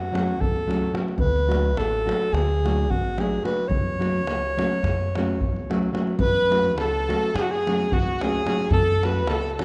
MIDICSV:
0, 0, Header, 1, 6, 480
1, 0, Start_track
1, 0, Key_signature, 3, "minor"
1, 0, Tempo, 557103
1, 1024, Time_signature, 9, 3, 24, 8
1, 8312, End_track
2, 0, Start_track
2, 0, Title_t, "Alto saxophone"
2, 0, Program_c, 0, 65
2, 0, Note_on_c, 0, 66, 77
2, 351, Note_on_c, 0, 69, 80
2, 364, Note_off_c, 0, 66, 0
2, 816, Note_off_c, 0, 69, 0
2, 1034, Note_on_c, 0, 71, 95
2, 1531, Note_on_c, 0, 69, 89
2, 1544, Note_off_c, 0, 71, 0
2, 2009, Note_on_c, 0, 68, 95
2, 2022, Note_off_c, 0, 69, 0
2, 2505, Note_on_c, 0, 66, 89
2, 2518, Note_off_c, 0, 68, 0
2, 2759, Note_on_c, 0, 68, 90
2, 2772, Note_off_c, 0, 66, 0
2, 2969, Note_off_c, 0, 68, 0
2, 2974, Note_on_c, 0, 71, 92
2, 3170, Note_on_c, 0, 73, 99
2, 3183, Note_off_c, 0, 71, 0
2, 5122, Note_off_c, 0, 73, 0
2, 5333, Note_on_c, 0, 71, 116
2, 5797, Note_off_c, 0, 71, 0
2, 5864, Note_on_c, 0, 69, 84
2, 6330, Note_on_c, 0, 68, 91
2, 6343, Note_off_c, 0, 69, 0
2, 6387, Note_on_c, 0, 66, 86
2, 6400, Note_off_c, 0, 68, 0
2, 6473, Note_on_c, 0, 68, 107
2, 6486, Note_off_c, 0, 66, 0
2, 6834, Note_on_c, 0, 66, 91
2, 6847, Note_off_c, 0, 68, 0
2, 7088, Note_on_c, 0, 68, 94
2, 7101, Note_off_c, 0, 66, 0
2, 7507, Note_off_c, 0, 68, 0
2, 7521, Note_on_c, 0, 69, 106
2, 7800, Note_on_c, 0, 71, 92
2, 7813, Note_off_c, 0, 69, 0
2, 8005, Note_on_c, 0, 69, 82
2, 8018, Note_off_c, 0, 71, 0
2, 8217, Note_off_c, 0, 69, 0
2, 8217, Note_on_c, 0, 69, 66
2, 8306, Note_off_c, 0, 69, 0
2, 8312, End_track
3, 0, Start_track
3, 0, Title_t, "Violin"
3, 0, Program_c, 1, 40
3, 5347, Note_on_c, 1, 71, 83
3, 5804, Note_off_c, 1, 71, 0
3, 5840, Note_on_c, 1, 69, 90
3, 6338, Note_on_c, 1, 68, 81
3, 6351, Note_off_c, 1, 69, 0
3, 6397, Note_on_c, 1, 66, 64
3, 6410, Note_off_c, 1, 68, 0
3, 6487, Note_on_c, 1, 68, 82
3, 6500, Note_off_c, 1, 66, 0
3, 6834, Note_on_c, 1, 66, 83
3, 6847, Note_off_c, 1, 68, 0
3, 7071, Note_on_c, 1, 68, 84
3, 7084, Note_off_c, 1, 66, 0
3, 7499, Note_off_c, 1, 68, 0
3, 7505, Note_on_c, 1, 69, 90
3, 7780, Note_on_c, 1, 71, 78
3, 7793, Note_off_c, 1, 69, 0
3, 8022, Note_on_c, 1, 69, 81
3, 8035, Note_off_c, 1, 71, 0
3, 8214, Note_off_c, 1, 69, 0
3, 8214, Note_on_c, 1, 69, 59
3, 8312, Note_off_c, 1, 69, 0
3, 8312, End_track
4, 0, Start_track
4, 0, Title_t, "Nylon-string guitar"
4, 0, Program_c, 2, 24
4, 108, Note_on_c, 2, 54, 61
4, 115, Note_on_c, 2, 61, 57
4, 116, Note_on_c, 2, 57, 51
4, 131, Note_on_c, 2, 66, 68
4, 296, Note_off_c, 2, 54, 0
4, 300, Note_off_c, 2, 61, 0
4, 301, Note_off_c, 2, 57, 0
4, 308, Note_off_c, 2, 66, 0
4, 580, Note_on_c, 2, 54, 62
4, 589, Note_on_c, 2, 57, 59
4, 592, Note_on_c, 2, 61, 53
4, 597, Note_on_c, 2, 66, 66
4, 760, Note_off_c, 2, 54, 0
4, 765, Note_off_c, 2, 57, 0
4, 766, Note_off_c, 2, 61, 0
4, 769, Note_off_c, 2, 66, 0
4, 797, Note_on_c, 2, 54, 58
4, 806, Note_on_c, 2, 57, 54
4, 806, Note_on_c, 2, 61, 62
4, 813, Note_on_c, 2, 66, 70
4, 974, Note_off_c, 2, 54, 0
4, 978, Note_off_c, 2, 61, 0
4, 979, Note_off_c, 2, 57, 0
4, 982, Note_off_c, 2, 66, 0
4, 1268, Note_on_c, 2, 54, 53
4, 1278, Note_on_c, 2, 57, 50
4, 1280, Note_on_c, 2, 62, 58
4, 1282, Note_on_c, 2, 66, 58
4, 1459, Note_off_c, 2, 54, 0
4, 1465, Note_off_c, 2, 57, 0
4, 1465, Note_off_c, 2, 62, 0
4, 1465, Note_off_c, 2, 66, 0
4, 1769, Note_on_c, 2, 54, 59
4, 1773, Note_on_c, 2, 57, 58
4, 1780, Note_on_c, 2, 62, 61
4, 1782, Note_on_c, 2, 66, 64
4, 1957, Note_off_c, 2, 54, 0
4, 1959, Note_off_c, 2, 57, 0
4, 1963, Note_off_c, 2, 62, 0
4, 1963, Note_off_c, 2, 66, 0
4, 2278, Note_on_c, 2, 57, 61
4, 2279, Note_on_c, 2, 54, 58
4, 2286, Note_on_c, 2, 62, 51
4, 2291, Note_on_c, 2, 66, 62
4, 2458, Note_off_c, 2, 57, 0
4, 2460, Note_off_c, 2, 54, 0
4, 2463, Note_off_c, 2, 62, 0
4, 2465, Note_off_c, 2, 66, 0
4, 2739, Note_on_c, 2, 54, 61
4, 2744, Note_on_c, 2, 57, 61
4, 2754, Note_on_c, 2, 62, 53
4, 2757, Note_on_c, 2, 66, 63
4, 2917, Note_off_c, 2, 54, 0
4, 2920, Note_off_c, 2, 57, 0
4, 2925, Note_off_c, 2, 62, 0
4, 2925, Note_off_c, 2, 66, 0
4, 2953, Note_on_c, 2, 54, 58
4, 2962, Note_on_c, 2, 57, 57
4, 2966, Note_on_c, 2, 62, 57
4, 2972, Note_on_c, 2, 66, 73
4, 3131, Note_off_c, 2, 54, 0
4, 3133, Note_off_c, 2, 57, 0
4, 3137, Note_off_c, 2, 62, 0
4, 3138, Note_off_c, 2, 66, 0
4, 3441, Note_on_c, 2, 54, 50
4, 3448, Note_on_c, 2, 57, 49
4, 3451, Note_on_c, 2, 61, 53
4, 3455, Note_on_c, 2, 66, 59
4, 3624, Note_off_c, 2, 54, 0
4, 3627, Note_off_c, 2, 57, 0
4, 3629, Note_off_c, 2, 61, 0
4, 3631, Note_off_c, 2, 66, 0
4, 3938, Note_on_c, 2, 54, 75
4, 3943, Note_on_c, 2, 57, 66
4, 3948, Note_on_c, 2, 61, 70
4, 3957, Note_on_c, 2, 66, 76
4, 4120, Note_off_c, 2, 54, 0
4, 4122, Note_off_c, 2, 57, 0
4, 4125, Note_off_c, 2, 61, 0
4, 4129, Note_off_c, 2, 66, 0
4, 4450, Note_on_c, 2, 54, 68
4, 4456, Note_on_c, 2, 57, 65
4, 4462, Note_on_c, 2, 61, 68
4, 4465, Note_on_c, 2, 66, 75
4, 4624, Note_off_c, 2, 54, 0
4, 4627, Note_off_c, 2, 57, 0
4, 4630, Note_off_c, 2, 61, 0
4, 4631, Note_off_c, 2, 66, 0
4, 4909, Note_on_c, 2, 54, 67
4, 4913, Note_on_c, 2, 57, 69
4, 4915, Note_on_c, 2, 61, 64
4, 4923, Note_on_c, 2, 66, 74
4, 5082, Note_off_c, 2, 54, 0
4, 5082, Note_off_c, 2, 57, 0
4, 5084, Note_off_c, 2, 61, 0
4, 5088, Note_off_c, 2, 66, 0
4, 5109, Note_on_c, 2, 54, 60
4, 5115, Note_on_c, 2, 57, 64
4, 5123, Note_on_c, 2, 61, 69
4, 5127, Note_on_c, 2, 66, 81
4, 5287, Note_off_c, 2, 54, 0
4, 5290, Note_off_c, 2, 57, 0
4, 5294, Note_off_c, 2, 61, 0
4, 5296, Note_off_c, 2, 66, 0
4, 5602, Note_on_c, 2, 54, 55
4, 5604, Note_on_c, 2, 57, 55
4, 5613, Note_on_c, 2, 61, 58
4, 5618, Note_on_c, 2, 66, 61
4, 5784, Note_off_c, 2, 57, 0
4, 5785, Note_off_c, 2, 54, 0
4, 5790, Note_off_c, 2, 61, 0
4, 5792, Note_off_c, 2, 66, 0
4, 6101, Note_on_c, 2, 54, 62
4, 6105, Note_on_c, 2, 57, 52
4, 6108, Note_on_c, 2, 61, 54
4, 6111, Note_on_c, 2, 66, 72
4, 6282, Note_off_c, 2, 54, 0
4, 6283, Note_off_c, 2, 57, 0
4, 6286, Note_off_c, 2, 61, 0
4, 6286, Note_off_c, 2, 66, 0
4, 6606, Note_on_c, 2, 54, 57
4, 6611, Note_on_c, 2, 57, 55
4, 6616, Note_on_c, 2, 61, 54
4, 6626, Note_on_c, 2, 66, 66
4, 6783, Note_off_c, 2, 54, 0
4, 6785, Note_off_c, 2, 57, 0
4, 6788, Note_off_c, 2, 61, 0
4, 6793, Note_off_c, 2, 66, 0
4, 7076, Note_on_c, 2, 54, 65
4, 7085, Note_on_c, 2, 57, 58
4, 7090, Note_on_c, 2, 61, 62
4, 7094, Note_on_c, 2, 66, 68
4, 7247, Note_off_c, 2, 54, 0
4, 7252, Note_off_c, 2, 57, 0
4, 7252, Note_off_c, 2, 61, 0
4, 7255, Note_off_c, 2, 66, 0
4, 7287, Note_on_c, 2, 54, 55
4, 7295, Note_on_c, 2, 57, 61
4, 7297, Note_on_c, 2, 61, 60
4, 7304, Note_on_c, 2, 66, 70
4, 7458, Note_off_c, 2, 54, 0
4, 7462, Note_off_c, 2, 57, 0
4, 7463, Note_off_c, 2, 61, 0
4, 7467, Note_off_c, 2, 66, 0
4, 7774, Note_on_c, 2, 54, 52
4, 7779, Note_on_c, 2, 57, 56
4, 7792, Note_on_c, 2, 61, 53
4, 7797, Note_on_c, 2, 66, 66
4, 7953, Note_off_c, 2, 54, 0
4, 7956, Note_off_c, 2, 57, 0
4, 7962, Note_off_c, 2, 61, 0
4, 7965, Note_off_c, 2, 66, 0
4, 8265, Note_on_c, 2, 54, 62
4, 8270, Note_on_c, 2, 61, 54
4, 8271, Note_on_c, 2, 57, 61
4, 8279, Note_on_c, 2, 66, 69
4, 8312, Note_off_c, 2, 54, 0
4, 8312, Note_off_c, 2, 57, 0
4, 8312, Note_off_c, 2, 61, 0
4, 8312, Note_off_c, 2, 66, 0
4, 8312, End_track
5, 0, Start_track
5, 0, Title_t, "Upright bass"
5, 0, Program_c, 3, 32
5, 0, Note_on_c, 3, 42, 68
5, 333, Note_off_c, 3, 42, 0
5, 333, Note_on_c, 3, 37, 81
5, 741, Note_off_c, 3, 37, 0
5, 1015, Note_on_c, 3, 38, 82
5, 1511, Note_off_c, 3, 38, 0
5, 1511, Note_on_c, 3, 33, 83
5, 1810, Note_off_c, 3, 33, 0
5, 2002, Note_on_c, 3, 38, 82
5, 2502, Note_off_c, 3, 38, 0
5, 2502, Note_on_c, 3, 33, 82
5, 2907, Note_off_c, 3, 33, 0
5, 3183, Note_on_c, 3, 42, 82
5, 3670, Note_off_c, 3, 42, 0
5, 3670, Note_on_c, 3, 37, 78
5, 3968, Note_off_c, 3, 37, 0
5, 4160, Note_on_c, 3, 42, 74
5, 4661, Note_off_c, 3, 42, 0
5, 4661, Note_on_c, 3, 37, 78
5, 5066, Note_off_c, 3, 37, 0
5, 5330, Note_on_c, 3, 42, 96
5, 5832, Note_off_c, 3, 42, 0
5, 5832, Note_on_c, 3, 37, 86
5, 6130, Note_off_c, 3, 37, 0
5, 6325, Note_on_c, 3, 42, 80
5, 6827, Note_off_c, 3, 42, 0
5, 6827, Note_on_c, 3, 37, 79
5, 7232, Note_off_c, 3, 37, 0
5, 7499, Note_on_c, 3, 42, 95
5, 7999, Note_off_c, 3, 42, 0
5, 7999, Note_on_c, 3, 37, 93
5, 8298, Note_off_c, 3, 37, 0
5, 8312, End_track
6, 0, Start_track
6, 0, Title_t, "Davul"
6, 131, Note_on_c, 9, 37, 65
6, 217, Note_off_c, 9, 37, 0
6, 238, Note_on_c, 9, 37, 26
6, 324, Note_off_c, 9, 37, 0
6, 355, Note_on_c, 9, 43, 74
6, 441, Note_off_c, 9, 43, 0
6, 483, Note_on_c, 9, 37, 25
6, 569, Note_off_c, 9, 37, 0
6, 609, Note_on_c, 9, 37, 65
6, 695, Note_off_c, 9, 37, 0
6, 817, Note_on_c, 9, 37, 63
6, 903, Note_off_c, 9, 37, 0
6, 933, Note_on_c, 9, 37, 29
6, 1019, Note_off_c, 9, 37, 0
6, 1023, Note_on_c, 9, 43, 80
6, 1109, Note_off_c, 9, 43, 0
6, 1172, Note_on_c, 9, 37, 23
6, 1259, Note_off_c, 9, 37, 0
6, 1305, Note_on_c, 9, 37, 66
6, 1392, Note_off_c, 9, 37, 0
6, 1427, Note_on_c, 9, 37, 25
6, 1513, Note_off_c, 9, 37, 0
6, 1528, Note_on_c, 9, 37, 73
6, 1614, Note_off_c, 9, 37, 0
6, 1665, Note_on_c, 9, 37, 27
6, 1751, Note_off_c, 9, 37, 0
6, 1800, Note_on_c, 9, 37, 67
6, 1886, Note_off_c, 9, 37, 0
6, 1914, Note_on_c, 9, 37, 27
6, 2000, Note_off_c, 9, 37, 0
6, 2020, Note_on_c, 9, 37, 68
6, 2106, Note_off_c, 9, 37, 0
6, 2159, Note_on_c, 9, 37, 22
6, 2245, Note_off_c, 9, 37, 0
6, 2289, Note_on_c, 9, 37, 61
6, 2375, Note_off_c, 9, 37, 0
6, 2400, Note_on_c, 9, 37, 25
6, 2486, Note_off_c, 9, 37, 0
6, 2503, Note_on_c, 9, 43, 75
6, 2590, Note_off_c, 9, 43, 0
6, 2625, Note_on_c, 9, 37, 24
6, 2711, Note_off_c, 9, 37, 0
6, 2740, Note_on_c, 9, 37, 61
6, 2826, Note_off_c, 9, 37, 0
6, 2976, Note_on_c, 9, 37, 58
6, 3062, Note_off_c, 9, 37, 0
6, 3075, Note_on_c, 9, 37, 23
6, 3161, Note_off_c, 9, 37, 0
6, 3196, Note_on_c, 9, 43, 83
6, 3282, Note_off_c, 9, 43, 0
6, 3332, Note_on_c, 9, 37, 19
6, 3418, Note_off_c, 9, 37, 0
6, 3463, Note_on_c, 9, 37, 52
6, 3550, Note_off_c, 9, 37, 0
6, 3682, Note_on_c, 9, 37, 72
6, 3768, Note_off_c, 9, 37, 0
6, 3811, Note_on_c, 9, 37, 25
6, 3897, Note_off_c, 9, 37, 0
6, 3952, Note_on_c, 9, 37, 67
6, 4038, Note_off_c, 9, 37, 0
6, 4063, Note_on_c, 9, 37, 25
6, 4149, Note_off_c, 9, 37, 0
6, 4171, Note_on_c, 9, 37, 63
6, 4171, Note_on_c, 9, 43, 62
6, 4258, Note_off_c, 9, 37, 0
6, 4258, Note_off_c, 9, 43, 0
6, 4315, Note_on_c, 9, 37, 26
6, 4401, Note_off_c, 9, 37, 0
6, 4441, Note_on_c, 9, 37, 72
6, 4527, Note_off_c, 9, 37, 0
6, 4547, Note_on_c, 9, 37, 24
6, 4634, Note_off_c, 9, 37, 0
6, 4658, Note_on_c, 9, 43, 71
6, 4745, Note_off_c, 9, 43, 0
6, 4794, Note_on_c, 9, 37, 27
6, 4880, Note_off_c, 9, 37, 0
6, 4917, Note_on_c, 9, 37, 63
6, 5004, Note_off_c, 9, 37, 0
6, 5023, Note_on_c, 9, 37, 27
6, 5109, Note_off_c, 9, 37, 0
6, 5124, Note_on_c, 9, 37, 58
6, 5210, Note_off_c, 9, 37, 0
6, 5233, Note_on_c, 9, 37, 26
6, 5319, Note_off_c, 9, 37, 0
6, 5333, Note_on_c, 9, 43, 83
6, 5420, Note_off_c, 9, 43, 0
6, 5617, Note_on_c, 9, 37, 62
6, 5703, Note_off_c, 9, 37, 0
6, 5735, Note_on_c, 9, 37, 27
6, 5821, Note_off_c, 9, 37, 0
6, 5839, Note_on_c, 9, 37, 73
6, 5925, Note_off_c, 9, 37, 0
6, 5971, Note_on_c, 9, 37, 27
6, 6057, Note_off_c, 9, 37, 0
6, 6119, Note_on_c, 9, 37, 64
6, 6205, Note_off_c, 9, 37, 0
6, 6233, Note_on_c, 9, 37, 26
6, 6319, Note_off_c, 9, 37, 0
6, 6338, Note_on_c, 9, 37, 78
6, 6424, Note_off_c, 9, 37, 0
6, 6475, Note_on_c, 9, 37, 27
6, 6561, Note_off_c, 9, 37, 0
6, 6611, Note_on_c, 9, 37, 73
6, 6697, Note_off_c, 9, 37, 0
6, 6718, Note_on_c, 9, 37, 25
6, 6804, Note_off_c, 9, 37, 0
6, 6825, Note_on_c, 9, 43, 84
6, 6911, Note_off_c, 9, 43, 0
6, 6958, Note_on_c, 9, 37, 27
6, 7044, Note_off_c, 9, 37, 0
6, 7077, Note_on_c, 9, 37, 73
6, 7163, Note_off_c, 9, 37, 0
6, 7294, Note_on_c, 9, 37, 72
6, 7380, Note_off_c, 9, 37, 0
6, 7403, Note_on_c, 9, 37, 29
6, 7489, Note_off_c, 9, 37, 0
6, 7512, Note_on_c, 9, 43, 81
6, 7598, Note_off_c, 9, 43, 0
6, 7648, Note_on_c, 9, 37, 21
6, 7734, Note_off_c, 9, 37, 0
6, 7783, Note_on_c, 9, 37, 64
6, 7869, Note_off_c, 9, 37, 0
6, 7894, Note_on_c, 9, 37, 24
6, 7980, Note_off_c, 9, 37, 0
6, 7990, Note_on_c, 9, 37, 79
6, 8077, Note_off_c, 9, 37, 0
6, 8132, Note_on_c, 9, 37, 27
6, 8218, Note_off_c, 9, 37, 0
6, 8265, Note_on_c, 9, 37, 79
6, 8312, Note_off_c, 9, 37, 0
6, 8312, End_track
0, 0, End_of_file